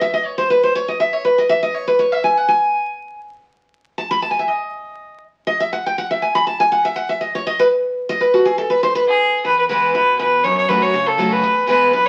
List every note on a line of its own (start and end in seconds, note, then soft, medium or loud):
0.01 0.13 E5 loud
0.13 0.25 D#5 loud
0.25 0.37 C#5 medium
0.38 0.50 C5 loud
0.50 0.63 B4 medium
0.63 0.75 C5 medium
0.75 0.88 C#5 loud
0.88 1.00 D#5 medium
1.00 1.13 E5 loud
1.13 1.24 C#5 loud
1.25 1.38 B4 medium
1.38 1.49 D#5 loud
1.49 1.62 E5 loud
1.63 1.74 D#5 loud
1.74 1.87 C#5 medium
1.87 1.99 B4 medium
1.99 2.12 C#5 medium
2.12 2.23 E5 loud
2.24 2.37 G#5 medium
2.37 2.48 F#5 medium
2.48 3.20 G#5 medium
3.98 4.10 A5 medium
4.11 4.22 B5 loud
4.22 4.30 A5 medium
4.31 4.39 G#5 medium
4.39 4.48 E5 medium
4.48 5.23 D#5 medium
5.47 5.60 D#5 loud
5.60 5.72 E5 loud
5.73 5.85 F#5 loud
5.86 5.97 G5 loud
5.98 6.10 F#5 medium
6.11 6.22 E5 loud
6.22 6.35 G#5 medium
6.35 6.46 B5 loud
6.47 6.60 A5 medium
6.60 6.71 G#5 loud
6.72 6.85 F#5 medium
6.85 6.96 E5 loud
6.96 7.09 F#5 loud
7.09 7.20 E5 loud
7.21 7.34 D#5 medium
7.35 7.46 C#5 medium
7.47 7.59 D#5 loud
7.59 7.66 B4 loud
8.09 8.21 D#5 loud
8.21 8.34 B4 medium
8.34 8.45 F#4 medium
8.45 8.58 G#4 loud
8.58 8.70 A4 loud
8.70 8.83 B4 loud
8.83 8.95 C5 loud
8.95 9.03 B4 loud
9.08 9.42 G#4 medium
9.45 9.92 E2 medium
9.45 9.58 B4 medium
9.59 9.64 B4 medium
9.69 9.93 E3 loud
9.69 9.94 G#3 medium
9.69 9.94 B3 medium
9.69 9.94 E4 loud
9.69 9.93 B4 medium
9.95 10.42 B2 medium
9.95 10.18 B4 medium
10.19 10.43 E2 medium
10.19 10.45 B4 medium
10.44 10.92 F#2 medium
10.44 10.57 C#5 medium
10.58 10.70 C#5 medium
10.68 10.92 F#3 medium
10.68 10.93 A3 medium
10.68 10.93 C#4 loud
10.68 10.94 F#4 loud
10.68 10.84 B4 medium
10.82 11.08 C#5 loud
10.94 11.41 C#3 medium
11.07 11.34 A4 medium
11.18 11.42 F#3 medium
11.18 11.43 A3 medium
11.18 11.43 C#4 loud
11.18 11.43 F#4 medium
11.32 11.68 B4 medium
11.43 11.91 E2 loud
11.67 11.92 E3 medium
11.67 11.92 G#3 medium
11.67 11.92 B3 loud
11.67 11.93 E4 loud
11.67 11.92 B4 medium
11.93 12.09 F#2 medium
11.93 12.07 B4 loud
12.06 12.09 C#5 medium